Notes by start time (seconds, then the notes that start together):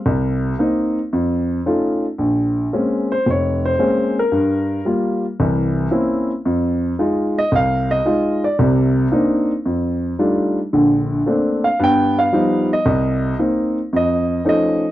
0.06 C2
0.59 A#3 C4 D#4
1.13 F2
1.66 A3 C#4 D#4 F4
2.18 A#1
2.73 G#3 A#3 C4 C#4
3.12 C5
3.26 F1 C#5
3.65 C5
3.79 G#3 A#3 C4 C#4
4.19 A#4
4.32 G2
4.85 G3 A#3 F4
5.40 C2 E3
5.91 A#3 C4 C#4 E4
6.45 F2
6.99 G#3 D#4 F4
7.38 D#5
7.52 C2 F5
7.91 D#5
8.05 G#3 D#4 F4
8.44 D5
8.59 C2 C3
9.12 A#3 C4 D4 D#4
9.65 F2
10.19 G3 A3 D4 D#4 F4
10.73 A#1 D3
11.26 A3 A#3 C4 D4
11.64 F5
11.79 G2 B3
11.84 G5
12.19 F5
12.32 F3 G3 B3 D#4
12.73 D#5
12.86 C2
13.39 A#3 C4 D#4
13.93 F2 D#5
14.45 F3 A3 C#4 D#4
14.49 D#5